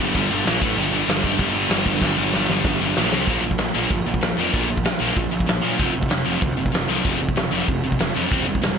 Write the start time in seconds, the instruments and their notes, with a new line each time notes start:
0.00 picked electric bass G1, distorted electric guitar G2 D3 G3
0.14 picked electric bass G1, distorted electric guitar G2 D3 G3, kick, crash
0.30 picked electric bass G1, distorted electric guitar G2 D3 G3, crash
0.46 picked electric bass A#1, distorted electric guitar A#2 F3 A#3, snare, crash
0.61 picked electric bass A1, distorted electric guitar A2 E3 A3, kick, crash
0.76 picked electric bass G1, distorted electric guitar G2 D3 G3, crash
0.93 distorted electric guitar G2 D3 G3, crash
1.07 picked electric bass G1, distorted electric guitar G2 D3 G3, snare, crash
1.23 picked electric bass G1, distorted electric guitar G2 D3 G3, kick, crash
1.38 picked electric bass G1, distorted electric guitar G2 D3 G3, kick, crash
1.54 distorted electric guitar G2 D3 G3, crash
1.70 picked electric bass G1, distorted electric guitar G2 D3 G3, snare, crash
1.85 picked electric bass G1, distorted electric guitar G2 D3 G3, kick, crash
2.02 picked electric bass G1, distorted electric guitar G2 D3 G3, kick, snare
2.18 picked electric bass G1, distorted electric guitar G2 D3 G3
2.34 picked electric bass G1, distorted electric guitar G2 D3 G3, snare
2.49 picked electric bass G1, distorted electric guitar G2 D3 G3, snare
2.65 picked electric bass G1, distorted electric guitar G2 D3 G3, kick, snare
2.81 picked electric bass G1, distorted electric guitar G2 D3 G3
2.97 picked electric bass A#1, distorted electric guitar A#2 F3 A#3, snare
3.11 picked electric bass C2, distorted electric guitar C3 G3 C4, snare
3.26 picked electric bass A#1, distorted electric guitar A#2 F3 A#3, kick, crash
3.43 picked electric bass A#1, distorted electric guitar A#2 F3
3.51 kick
3.58 picked electric bass A#1, distorted electric guitar A#2 F3, snare, crash
3.74 picked electric bass A#1, distorted electric guitar A#2 F3 A#3
3.90 picked electric bass G1, distorted electric guitar A#2 F3, kick, crash
4.06 picked electric bass A#1, distorted electric guitar A#2 F3
4.14 kick
4.21 picked electric bass A#1, distorted electric guitar A#2 F3, snare, crash
4.37 picked electric bass F2, distorted electric guitar A#2 F3 A#3
4.52 picked electric bass A#1, distorted electric guitar A#2 F3 A#3, kick, crash
4.69 distorted electric guitar A#2 F3
4.77 kick
4.84 picked electric bass A#1, distorted electric guitar A#2 F3, snare, crash
4.99 picked electric bass A#1, distorted electric guitar A#2 F3 A#3
5.16 picked electric bass A#1, distorted electric guitar A#2 F3, kick, crash
5.31 picked electric bass A#1, distorted electric guitar A#2 F3
5.40 kick
5.46 picked electric bass A#1, distorted electric guitar A#2 F3, snare, crash
5.62 distorted electric guitar A#2 F3 A#3, picked electric bass A#2
5.78 picked electric bass F1, distorted electric guitar F2 C3 F3, kick, crash
5.94 picked electric bass F1, distorted electric guitar F2 C3
6.03 kick
6.09 picked electric bass F1, distorted electric guitar F2 C3, snare, crash
6.25 picked electric bass F1, distorted electric guitar F2 C3 F3
6.41 picked electric bass D2, distorted electric guitar F2 C3, kick, crash
6.57 picked electric bass F1, distorted electric guitar F2 C3
6.66 kick
6.72 picked electric bass F1, distorted electric guitar F2 C3, snare, crash
6.88 picked electric bass C2, distorted electric guitar F2 C3 F3
7.04 picked electric bass F1, distorted electric guitar F2 C3 F3, kick, crash
7.21 distorted electric guitar F2 C3
7.29 kick
7.36 picked electric bass F1, distorted electric guitar F2 C3, snare, crash
7.51 picked electric bass F1, distorted electric guitar F2 C3 F3
7.67 picked electric bass F1, distorted electric guitar F2 C3, kick, crash
7.84 picked electric bass F1, distorted electric guitar F2 C3
7.92 kick
7.99 picked electric bass F1, distorted electric guitar F2 C3, snare, crash
8.15 distorted electric guitar F2 C3 F3, picked electric bass F2
8.31 picked electric bass E1, distorted electric guitar C3 G3 C4, kick, crash
8.47 picked electric bass E1, distorted electric guitar C3 G3
8.55 kick
8.62 picked electric bass E1, distorted electric guitar C3 G3, snare, crash